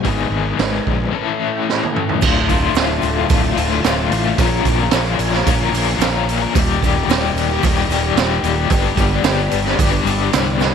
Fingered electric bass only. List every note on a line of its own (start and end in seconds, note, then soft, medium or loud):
0.05 0.24 G#1 medium
0.30 0.50 G#1 medium
0.59 0.79 G#1 medium
0.87 1.06 A#1 medium
2.23 2.68 D1 medium
2.74 2.98 D1 medium
3.03 3.25 D1 medium
3.30 3.53 D1 medium
3.57 3.80 D1 medium
3.85 4.07 D1 medium
4.11 4.34 A1 medium
4.38 4.61 A#1 medium
4.65 4.88 A#1 medium
4.93 5.15 A#1 medium
5.19 5.42 A#1 medium
5.46 5.69 A#1 medium
5.72 5.95 A#1 medium
5.98 6.45 A#1 medium
6.55 7.00 D#1 medium
7.08 7.31 D#1 medium
7.34 7.57 D#1 medium
7.64 7.86 D#1 medium
7.88 8.12 D#1 medium
8.16 8.39 D#1 medium
8.43 8.66 D#1 medium
8.70 8.93 G1 medium
8.97 9.20 G1 medium
9.24 9.47 G1 medium
9.52 9.75 G1 medium
9.78 10.01 G1 medium
10.05 10.28 G1 medium
10.34 10.74 C2 medium